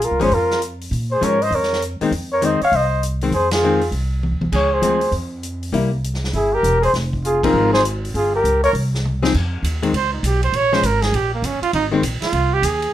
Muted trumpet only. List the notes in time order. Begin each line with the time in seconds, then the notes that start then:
0.05 A#4
0.23 C5
0.34 A#4
1.11 C5
1.24 C#5
1.42 D#5
1.56 C#5
2.32 C#5
2.46 D#5
2.65 F5
2.76 D#5
3.35 C5
3.53 G#4
4.56 C#5
4.74 C5
6.36 G#4
6.55 A#4
6.84 C5
7.26 G#4
7.44 A#4
7.74 C5
8.16 G#4
8.36 A#4
8.64 C#5